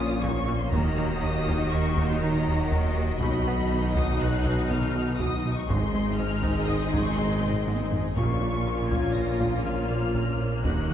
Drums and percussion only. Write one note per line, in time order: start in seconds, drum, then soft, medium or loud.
0.22 taiko medium
0.72 taiko loud
1.47 taiko medium
1.96 taiko medium
2.21 taiko low-mid medium
2.71 taiko medium
3.21 taiko loud
3.95 taiko medium
4.45 taiko medium
4.70 taiko low-mid medium
5.19 taiko medium
5.69 taiko loud
6.43 taiko medium
6.93 taiko medium
7.17 taiko low-mid medium
7.42 taiko low-mid medium
7.67 taiko high medium
7.92 taiko low medium
8.17 taiko medium
8.91 taiko medium
9.40 taiko medium
9.65 taiko low-mid medium
10.14 taiko medium
10.64 taiko medium